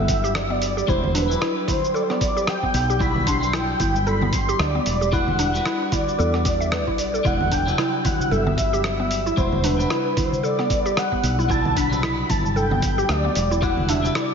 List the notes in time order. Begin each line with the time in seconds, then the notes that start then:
Already playing: G1 F#3 G3 B3 D4 E4 B4 E5
0.08 kick, open hi-hat, shaker
0.24 G4, shaker
0.35 D5, cross-stick, shaker
0.43 E5
0.50 B3 D5
0.62 open hi-hat, shaker
0.77 G4, shaker
0.87 E1 G3 D4 E4 F#4 B4 C5, kick, shaker
1.04 low conga
1.15 D4 B4, open hi-hat, shaker
1.28 F#3 G3 D4 E4 B4, shaker
1.41 E4, cross-stick, shaker
1.68 E4 C5, kick, open hi-hat, low conga, shaker
1.84 shaker
1.94 A4 D5, shaker
2.03 C5
2.10 B3 D5, cross-stick
2.21 kick, open hi-hat, shaker
2.37 G4, shaker
2.47 G5, cross-stick, shaker
2.63 B3, kick
2.74 B1, open hi-hat, shaker
2.90 G4, shaker
2.99 G3 D4 E4 F#4 B4 B5, kick, shaker
3.16 low conga
3.27 D4 C6, kick, open hi-hat, shaker
3.40 F#3 G3 D4 E4 B4, shaker
3.53 E4 G5, cross-stick, shaker
3.80 G1 E4, kick, open hi-hat, low conga, shaker
3.96 shaker
4.06 A4 B5, shaker
4.21 B3, low conga
4.33 C6, kick, open hi-hat, shaker
4.49 G4, shaker
4.59 D2 D5, cross-stick, shaker
4.75 B3
4.86 E1, open hi-hat, shaker
5.01 G4, shaker
5.12 G3 D4 E4 F#4 B4 F#5, kick, shaker
5.28 low conga
5.39 D4, open hi-hat, shaker
5.53 G3 D4 E4 F#4 B4, shaker
5.66 E4, cross-stick, shaker
5.92 E4 D5, kick, open hi-hat, low conga, shaker
6.08 shaker
6.19 E2 A4, shaker
6.34 B3, cross-stick
6.45 B3, kick, open hi-hat, shaker
6.60 E5, shaker
6.72 B4 D5, cross-stick, shaker
6.87 B1 E4, kick
6.98 open hi-hat, shaker
7.14 A4, shaker
7.24 E1 G3 D4 E4 F#4 B4 F#5, kick, shaker
7.40 low conga
7.52 D4 G5, kick, open hi-hat, shaker
7.65 F#3 G3 D4 E4, darbuka tek, darbuka dum, shaker
7.69 B4
7.78 E4, cross-stick, shaker
8.05 E4 F#5, kick, open hi-hat, darbuka ka, low conga, shaker
8.20 darbuka tek, darbuka dum, shaker
8.31 G1 A4 E5, shaker
8.47 B3, low conga
8.58 kick, open hi-hat, shaker
8.73 G4, shaker
8.84 E5, cross-stick, shaker
9.00 B3, darbuka tek
9.11 open hi-hat, shaker
9.26 E4, darbuka tek, shaker
9.36 E1 G3 D4 E4 F#4 B4 C5, kick, shaker
9.52 low conga, darbuka dum
9.63 D4 B4, open hi-hat, darbuka ka, shaker
9.77 G3 D4 E4 F#4, darbuka tek, darbuka dum, shaker
9.81 B4
9.90 E4, cross-stick, shaker
10.17 E4 C5, kick, open hi-hat, darbuka ka, low conga, shaker
10.32 darbuka tek, darbuka dum, shaker
10.43 A4 D5, shaker
10.58 B3, cross-stick, darbuka ka, darbuka tek
10.70 kick, open hi-hat, darbuka tek, shaker
10.86 G4, shaker
10.97 F#5, cross-stick, shaker
11.12 B3, kick, darbuka ka, darbuka tek
11.23 B1, open hi-hat, shaker
11.39 E4, shaker
11.49 G3 D4 E4 F#4 B4 A5, kick, shaker
11.65 low conga
11.76 D4 B5, kick, open hi-hat, darbuka ka, shaker
11.89 F#3 G3 D4 E4, darbuka tek, darbuka dum, shaker
11.93 B4
12.03 E4, cross-stick, shaker
12.29 G1 E4 A5, kick, open hi-hat, darbuka ka, low conga, shaker
12.44 darbuka tek, darbuka dum, shaker
12.56 A4 G5, shaker
12.71 B3, low conga
12.82 kick, open hi-hat, shaker
12.98 G4, shaker
13.09 D2 D5, cross-stick, shaker
13.25 B3, darbuka tek
13.35 E1, open hi-hat, shaker
13.51 E4, darbuka tek, shaker
13.61 G3 D4 E4 F#4 B4 F#5, kick, shaker
13.77 darbuka dum, low conga
13.89 D4 E5, open hi-hat, darbuka ka, shaker
14.02 G3 D4 E4 F#4, darbuka tek, darbuka dum, shaker
14.06 B4
14.15 E4 D5, cross-stick, shaker